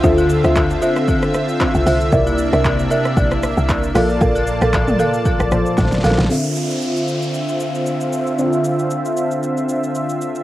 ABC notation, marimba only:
X:1
M:4/4
L:1/16
Q:"Swing 16ths" 1/4=115
K:Dm
V:1 name="Marimba"
[Fce]3 [Fce]3 [Fce]2 z6 [Fce]2 | [Bde]3 [Bde]3 [Bde]2 z6 [ABf]2 | [ABf]3 [ABf]3 [ABf]2 z6 [ABf]2 | z16 |
z16 |]